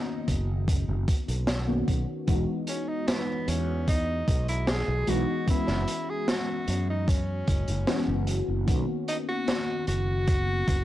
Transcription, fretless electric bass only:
0.28 0.87 F#1 medium
0.88 1.04 F#1 medium
1.28 1.82 B1 medium
1.88 2.04 B1 medium
2.28 2.44 E1 loud
3.48 4.22 E2 medium
4.28 4.82 B1 medium
4.88 5.04 B1 loud
5.08 5.24 B1 medium
5.48 muted fretless electric bass stroke soft
5.68 5.84 F#1 medium
6.68 7.42 F#2 medium
7.48 7.64 F#1 loud
7.68 7.84 F#1 loud
8.08 8.40 F#1 medium
8.48 8.64 F#1 medium
8.68 8.84 B1 loud
9.87 10.62 F#1 medium
10.68 10.84 F#1 loud

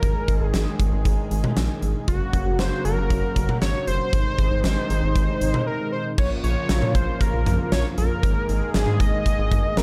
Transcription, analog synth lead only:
0.00 0.46 A#4 medium
0.46 0.76 G#4 medium
2.08 2.61 F#4 medium
2.59 2.84 C5 loud
2.85 3.58 A#4 loud
3.62 3.86 C#5 loud
3.88 5.63 C5 loud
5.67 5.91 A#4 medium
5.92 6.04 C5 medium
6.18 6.30 C#5 medium
6.44 6.97 C#5 loud
6.95 7.22 C5 medium
7.21 7.71 A#4 medium
7.72 7.84 C#5 medium
7.98 8.71 A#4 medium
8.75 9.02 G#4 medium
9.00 9.79 D#5 loud
9.77 9.83 A#4 medium

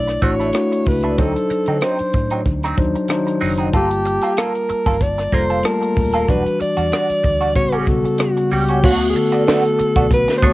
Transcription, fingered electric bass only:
0.00 0.17 B1 medium
0.22 0.51 A1 medium
0.86 1.15 C#2 medium
1.19 1.34 D2 loud
1.51 muted fingered electric bass stroke soft
1.68 1.81 D3 medium
2.00 muted fingered electric bass stroke soft
2.14 2.42 A2 medium
2.46 2.74 D2 medium
2.78 2.93 D#2 medium
3.42 3.70 F#1 medium
3.74 4.17 G1 medium
4.70 muted fingered electric bass stroke soft
4.87 5.28 G1 medium
5.33 5.61 F1 medium
5.97 6.25 D#1 medium
6.29 6.44 E1 medium
6.61 muted fingered electric bass stroke soft
6.78 6.91 E2 medium
7.10 muted fingered electric bass stroke soft
7.24 7.56 D2 medium
7.56 7.84 A1 medium
7.87 8.03 B1 medium
8.52 8.80 C#2 medium
8.84 9.12 D2 loud
9.80 muted fingered electric bass stroke soft
9.96 10.25 B1 medium
10.43 10.53 D2 medium

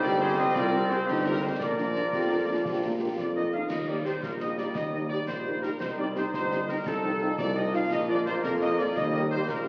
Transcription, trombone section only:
0.00 1.56 G3 loud
0.00 1.61 C4 loud
1.60 3.53 F3 loud
1.60 3.53 A#3 loud
3.70 5.77 G3 medium
3.70 5.76 A#3 medium
5.81 6.82 G3 medium
5.81 7.88 D#4 medium
6.86 8.96 F3 medium
7.91 9.68 A#3 loud
8.96 9.68 G3 loud

